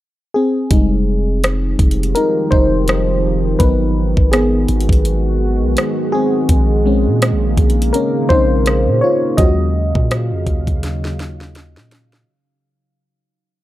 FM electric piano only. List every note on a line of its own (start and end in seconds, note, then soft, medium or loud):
0.34 2.12 C4 medium
0.34 2.21 G#4 medium
0.71 1.75 G3 soft
0.71 1.75 G#3 soft
0.71 1.76 D#4 medium
2.15 2.50 D#4 medium
2.15 2.52 A#4 medium
2.51 3.57 D#4 medium
2.51 3.56 C5 medium
3.59 4.64 F#3 medium
3.59 4.32 B3 medium
3.59 4.29 D#4 medium
3.59 4.65 A#4 soft
3.59 4.28 B4 medium
4.32 6.10 B3 medium
4.32 6.11 G#4 medium
6.12 6.85 C4 medium
6.12 7.99 G#4 medium
6.86 7.90 G#3 medium
6.86 7.90 C4 soft
6.86 7.91 C#4 medium
7.93 8.09 C#4 medium
7.93 8.07 A#4 medium
8.29 8.63 G#3 soft
8.29 8.63 C4 soft
8.29 8.63 C#4 medium
8.29 8.99 D#4 medium
8.29 9.04 C5 loud
9.01 9.37 F4 medium
9.01 9.39 C#5 medium
9.37 9.89 F#3 medium
9.37 9.89 C#4 soft
9.37 9.89 F4 medium
9.37 11.52 F#4 medium
9.37 11.51 D#5 loud